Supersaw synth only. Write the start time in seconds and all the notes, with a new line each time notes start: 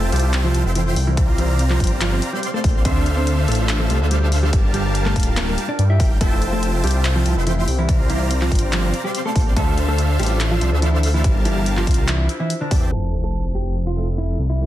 Already playing: F4 C5 E5 G5 A5
0.65 F4 C5 E5 G5 C6
1.17 C4 C5 D5 F5 A#5
2.33 C4 C5 D5 F5 C6
2.85 D4 A4 C5 E5 F5
4.01 D4 A4 C5 E5 F5
4.53 G3 G4 A#4 F5 A5
6.00 G3 G4 A#4 F5 G5
6.21 F4 C5 E5 G5 A5
7.36 F4 C5 E5 G5 C6
7.89 C4 C5 D5 F5 A#5
9.04 C4 C5 D5 F5 C6
9.56 D4 A4 C5 E5 F5
10.72 D4 A4 C5 E5 F5
11.24 G3 G4 A#4 F5 A5
12.71 C4 G4 D5 E5 A5